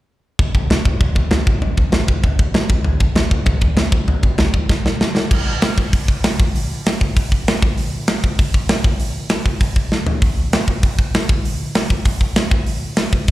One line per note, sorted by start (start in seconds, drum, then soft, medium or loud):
0.39 kick loud
0.39 floor tom medium
0.55 kick medium
0.55 floor tom medium
0.70 snare loud
0.70 floor tom medium
0.85 kick medium
0.85 floor tom medium
1.01 kick loud
1.01 floor tom medium
1.15 kick medium
1.15 floor tom medium
1.31 snare loud
1.31 floor tom medium
1.47 kick loud
1.47 floor tom medium
1.62 floor tom medium
1.77 kick medium
1.77 floor tom medium
1.92 snare loud
1.92 floor tom medium
2.08 kick medium
2.08 floor tom medium
2.23 kick medium
2.23 floor tom medium
2.39 kick medium
2.39 floor tom medium
2.54 snare loud
2.54 floor tom medium
2.69 kick loud
2.69 floor tom medium
2.85 floor tom medium
3.00 kick medium
3.00 floor tom medium
3.16 snare loud
3.16 floor tom medium
3.31 kick medium
3.31 floor tom medium
3.46 kick loud
3.46 floor tom medium
3.61 kick medium
3.61 floor tom medium
3.77 snare loud
3.77 floor tom medium
3.92 kick loud
3.92 floor tom medium
4.08 floor tom medium
4.23 kick medium
4.23 floor tom medium
4.38 snare loud
4.38 floor tom medium
4.54 kick medium
4.54 floor tom medium
4.69 kick loud
4.69 snare medium
4.86 snare medium
5.01 snare medium
5.17 snare medium
5.31 kick loud
5.31 crash loud
5.62 snare loud
5.62 open hi-hat medium
5.78 kick medium
5.93 kick loud
5.93 open hi-hat medium
6.08 kick medium
6.24 snare loud
6.24 open hi-hat medium
6.40 kick loud
6.55 open hi-hat medium
6.86 snare loud
6.86 open hi-hat medium
7.01 kick medium
7.16 kick loud
7.16 open hi-hat medium
7.32 kick medium
7.48 snare loud
7.48 open hi-hat medium
7.62 kick loud
7.78 open hi-hat medium
8.07 snare loud
8.07 open hi-hat medium
8.24 kick medium
8.39 kick loud
8.39 open hi-hat medium
8.54 kick medium
8.69 snare loud
8.69 open hi-hat medium
8.84 kick loud
9.00 open hi-hat medium
9.29 snare loud
9.29 open hi-hat medium
9.46 kick medium
9.60 kick loud
9.60 open hi-hat medium
9.76 kick medium
9.92 snare medium
10.07 floor tom medium
10.22 kick loud
10.22 open hi-hat soft
10.53 snare loud
10.53 open hi-hat soft
10.68 kick medium
10.83 kick loud
10.83 open hi-hat medium
10.99 kick medium
11.14 snare loud
11.14 open hi-hat medium
11.29 kick loud
11.45 open hi-hat medium
11.75 snare loud
11.75 open hi-hat medium
11.90 kick medium
12.05 kick loud
12.05 open hi-hat medium
12.21 kick medium
12.36 snare loud
12.36 open hi-hat medium
12.51 kick loud
12.66 open hi-hat medium
12.96 snare loud
12.96 open hi-hat medium
13.13 kick medium
13.28 open hi-hat medium